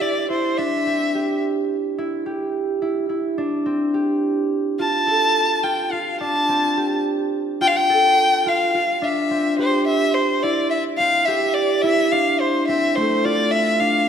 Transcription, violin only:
0.01 D5
0.31 C5
0.57 E5
4.80 A5
5.63 G5
5.92 F5
6.20 A5
7.61 G5
7.67 F5
7.76 G5
8.48 F5
9.04 E5
9.59 C5
9.87 E5
10.14 C5
10.42 D5
10.70 E5
10.98 F5
11.26 E5
11.54 D5
11.82 E5
12.12 F5
12.40 C5
12.67 E5
12.95 C5
13.25 D5
13.51 E5
13.80 F5

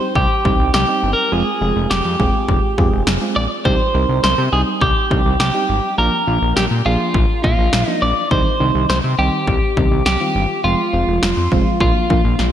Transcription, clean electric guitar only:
Already playing: C5
0.16 G4
0.74 G4
1.13 A#4
1.32 G#4
1.91 G4
3.36 D5
3.65 C5
4.24 C5
4.53 G#4
4.82 G4
5.40 G4
5.98 A#4
6.57 G4
6.86 F4
7.44 F4
7.91 D#4
8.02 D5
8.31 C5
8.90 C5
9.19 G4
10.06 G4
10.64 F4
11.81 F4

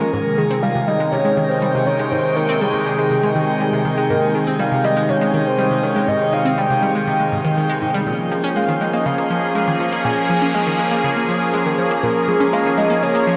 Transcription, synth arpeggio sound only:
0.01 G#3
0.13 G#2
0.38 D#3
0.51 C4
0.63 G3
0.75 C3
0.88 G3
1.00 G#3
1.13 C3
1.25 G#3
1.37 D#3
1.62 G3
1.75 C3
1.87 D#3
1.99 G#3
2.12 G#2
2.36 D#3
2.49 C4
2.61 G3
2.74 C3
2.86 G3
2.99 G#3
3.11 C3
3.23 G#3
3.36 D#3
3.60 G3
3.73 C3
3.85 D#3
3.98 G#3
4.10 G#2
4.35 D#3
4.47 C4
4.59 G3
4.72 C3
4.84 G3
4.97 G#3
5.09 C3
5.21 G#3
5.34 D#3
5.58 G3
5.71 C3
5.83 D#3
5.96 G#3
6.08 G#2
6.33 D#3
6.45 C4
6.58 G3
6.70 C3
6.82 G3
6.95 G#3
7.07 C3
7.20 G#3
7.32 G#2
7.45 D#3
7.57 D#3
7.69 G#3
7.82 G#2
7.94 G3
8.07 A#2
8.31 F3
8.44 C#4
8.56 G#3
8.68 D#3
8.81 G#3
8.93 A#3
9.06 C#3
9.18 A#3
9.31 F3
9.55 G#3
9.68 D#3
9.80 F3
9.92 A#3
10.05 A#2
10.30 F3
10.42 C#4
10.54 G#3
10.67 D#3
10.79 G#3
10.91 A#3
11.04 C#3
11.16 A#3
11.29 F3
11.54 G#3
11.66 D#3
11.78 F3
11.91 A#3
12.03 A#2
12.28 F3
12.40 C#4
12.53 G#3
12.65 D#3
12.78 G#3
12.90 A#3
13.03 C#3
13.15 A#3
13.27 F3

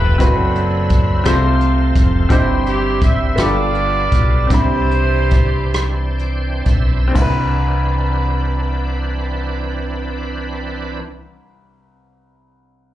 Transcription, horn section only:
Already playing: B4
0.22 C4 D4 A4
2.67 G4
3.03 E5
3.39 F4 B4 D5
4.51 E4 G4 C5

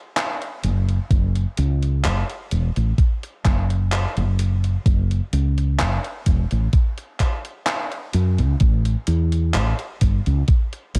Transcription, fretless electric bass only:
0.64 F#1
1.11 F#1
1.58 C#2
2.05 F#1
2.52 E1
2.77 A1
3.45 F#1
4.17 F#1
4.86 F#1
5.33 C#2
5.80 F#1
6.26 E1
6.52 A1
8.14 F#2
8.39 C#2
8.61 A1
9.08 E2
9.55 A1
10.02 G1
10.27 C#2
10.95 A1

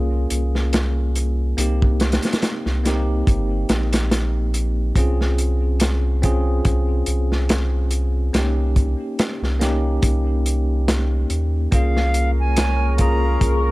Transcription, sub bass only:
Already playing: C2
0.31 C2
1.58 C2
2.66 C2
3.27 G1
3.69 A#1
4.95 C2
6.65 C2
7.07 C2
8.34 C2
9.42 C2
10.03 C2
11.30 D#2
11.72 C2
13.41 C2

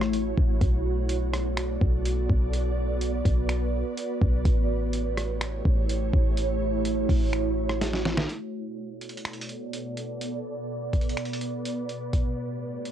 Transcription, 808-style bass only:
Already playing: A1
0.38 A1
0.61 B1
1.81 B1
2.29 B1
3.25 B1
4.22 B1
4.45 A1
5.65 A1
6.13 A1
7.09 A1

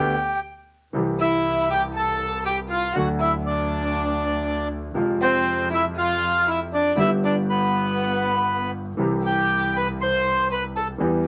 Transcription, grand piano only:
Already playing: D2 D3 A3 B3 G4
0.93 C2 C3 E3 G3 C4 G4
2.95 D2 D3 F#3 A3 F#4
4.94 F2 C3 F3 G#3 F4
6.96 G1 G2 D3 G3 B3 G4
8.97 C2 C3 E3 G3 C4 G4
10.98 E2 E3 G3 B3
11.03 G4

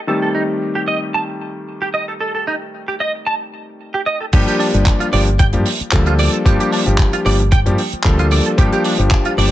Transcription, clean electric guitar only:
0.08 A4
0.22 A4
0.35 D#4
0.75 G4
0.88 D#5
1.14 A5
1.82 G4
1.94 D#5
2.08 A4
2.20 A4
2.35 A4
2.47 D#4
2.88 G4
3.00 D#5
3.27 A5
3.94 G4
4.06 D#5
4.21 A4
4.33 G4
4.47 G4
4.60 D4
5.00 F4
5.13 D5
5.39 G5
6.07 F4
6.19 D5
6.33 A4
6.46 G4
6.60 G4
6.72 D4
7.13 F4
7.26 D5
7.52 G5
8.19 F4
8.32 D5
8.46 A4
8.59 G4
8.73 G4
8.85 D4
9.26 F4
9.38 D5

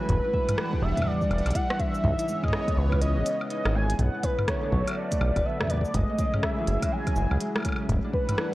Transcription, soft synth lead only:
Already playing: B4
0.82 E5
1.07 D5
1.55 F#5
1.80 E5
2.43 D#5
2.77 B4
3.01 D#5
3.50 D#5
3.75 G#5
3.99 F#5
4.23 B4
4.48 C#5
4.97 D5
5.45 E5
5.70 D5
5.94 D#5
6.43 E5
6.92 G#5
8.14 B4

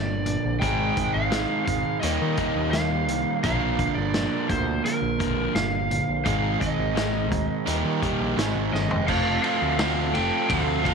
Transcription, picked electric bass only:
Already playing: G1
0.45 A#1
0.62 G#1
1.15 G#1
1.68 G#1
2.03 D#2
2.22 D#3
2.56 D#2
3.09 C2
3.44 A#1
3.97 G1
4.50 D2
5.02 A#1
5.55 G1
6.08 A#1
6.26 G#1
6.79 G#1
7.32 D2
7.67 D#2
7.85 D#3
8.19 A#1
8.37 G#1
8.56 G#1
8.73 G1
8.91 F1
9.08 F1
9.62 D2
10.14 F1
10.50 D2

